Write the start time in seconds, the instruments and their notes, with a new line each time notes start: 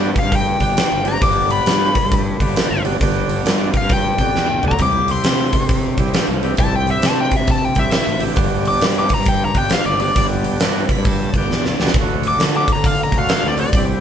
Already playing: fingered electric bass G2, tonewheel organ G3 B3 D4 G4
0.16 lead electric guitar F5, kick, open hi-hat
0.24 fingered electric bass G2
0.32 kick, open hi-hat
0.36 lead electric guitar G5
0.59 fingered electric bass G1, tonewheel organ G3 B3 D4 G4, kick, open hi-hat
0.77 snare, open hi-hat
0.92 fingered electric bass G1
1.05 tonewheel organ G3 B3 D4 G4, lead electric guitar A#5, open hi-hat
1.20 fingered electric bass G1, tonewheel organ G3 B3 D4 G4, lead electric guitar D6, kick, open hi-hat
1.50 lead electric guitar B5, open hi-hat
1.66 fingered electric bass G2, snare, open hi-hat
1.95 kick, open hi-hat
2.03 fingered electric bass G2
2.12 kick, open hi-hat
2.40 fingered electric bass G1, tonewheel organ G3 B3 D4 G4, kick, open hi-hat
2.56 snare, open hi-hat
2.70 fingered electric bass G1
2.84 tonewheel organ G3 B3 D4 G4, open hi-hat
3.00 fingered electric bass G1, tonewheel organ G3 B3 D4 G4, kick, open hi-hat
3.29 open hi-hat
3.45 fingered electric bass G2, snare, open hi-hat
3.74 lead electric guitar F5, kick, open hi-hat
3.82 fingered electric bass G2
3.89 kick, open hi-hat
3.93 lead electric guitar G5
4.18 fingered electric bass F2, tonewheel organ G3 B3 D4 G4, kick, open hi-hat
4.34 fingered electric bass E2, snare
4.63 fingered electric bass D2, tonewheel organ G3 B3 D4 G4, mid tom
4.68 lead electric guitar A#5, kick
4.79 fingered electric bass C2, tonewheel organ G3 C4 E4 G4, kick, open hi-hat
4.83 lead electric guitar D6
5.08 lead electric guitar C6, open hi-hat
5.24 fingered electric bass C3, snare, open hi-hat
5.53 kick, open hi-hat
5.61 fingered electric bass C3
5.69 kick, open hi-hat
5.97 fingered electric bass C2, tonewheel organ G3 C4 E4 G4, kick, open hi-hat
6.14 snare, open hi-hat
6.28 fingered electric bass C2
6.43 tonewheel organ G3 C4 E4 G4, open hi-hat
6.57 fingered electric bass C2, tonewheel organ G3 C4 E4 G4, lead electric guitar A5, kick, open hi-hat
6.76 lead electric guitar G5
6.87 open hi-hat
6.91 lead electric guitar E5
7.02 fingered electric bass C3, lead electric guitar A5, snare, open hi-hat
7.20 lead electric guitar G5
7.31 kick, open hi-hat
7.36 fingered electric bass C3, lead electric guitar E5
7.47 lead electric guitar A5, kick, open hi-hat
7.65 lead electric guitar G5
7.75 fingered electric bass C2, tonewheel organ G3 C4 E4 G4, kick, open hi-hat
7.79 lead electric guitar E5
7.91 lead electric guitar E5, snare, open hi-hat
8.07 fingered electric bass A1
8.20 tonewheel organ G3 C4 E4 G4, open hi-hat
8.33 fingered electric bass G1, tonewheel organ G3 B3 D4 G4, kick, open hi-hat
8.65 lead electric guitar D6, open hi-hat
8.81 fingered electric bass G2, snare, open hi-hat
8.99 lead electric guitar D6
9.09 kick, open hi-hat
9.14 lead electric guitar A#5
9.19 fingered electric bass G2
9.25 lead electric guitar G5, kick, open hi-hat
9.45 lead electric guitar A#5
9.54 fingered electric bass G1, tonewheel organ G3 B3 D4 G4, lead electric guitar G5, kick, open hi-hat
9.70 lead electric guitar F5, snare, open hi-hat
9.86 fingered electric bass G1, lead electric guitar D5
9.99 tonewheel organ G3 B3 D4 G4, lead electric guitar D5, open hi-hat
10.15 fingered electric bass G1, tonewheel organ G3 B3 D4 G4, kick, open hi-hat
10.44 open hi-hat
10.60 fingered electric bass G2, snare, open hi-hat
10.89 tonewheel organ B5, kick, open hi-hat
10.97 fingered electric bass G2
11.05 tonewheel organ A5, kick, open hi-hat
11.33 fingered electric bass G1, tonewheel organ G3 B3 G5, kick, open hi-hat
11.38 tonewheel organ D4 G4
11.50 fingered electric bass E2, snare
11.55 tonewheel organ D5
11.65 snare
11.79 fingered electric bass D2, tonewheel organ G3 B3 D4 G4, snare
11.87 snare
11.94 fingered electric bass D2, kick, open hi-hat
12.00 tonewheel organ F#3 A3 D4 F#4
12.23 open hi-hat
12.28 lead electric guitar D6
12.39 fingered electric bass D3, snare, open hi-hat
12.57 lead electric guitar D6
12.68 kick, open hi-hat
12.73 fingered electric bass D3, lead electric guitar A#5
12.84 lead electric guitar F5, kick, open hi-hat
13.04 lead electric guitar A#5
13.12 fingered electric bass D2, kick, open hi-hat
13.16 tonewheel organ F#3 A3 D4 F#4, lead electric guitar F5
13.29 snare, open hi-hat
13.33 lead electric guitar F5
13.44 fingered electric bass D2
13.48 lead electric guitar D5
13.57 tonewheel organ F#3 A3 D4 F#4, lead electric guitar D5, open hi-hat
13.73 fingered electric bass C2, tonewheel organ C4, kick, open hi-hat
13.77 tonewheel organ G3 E4 G4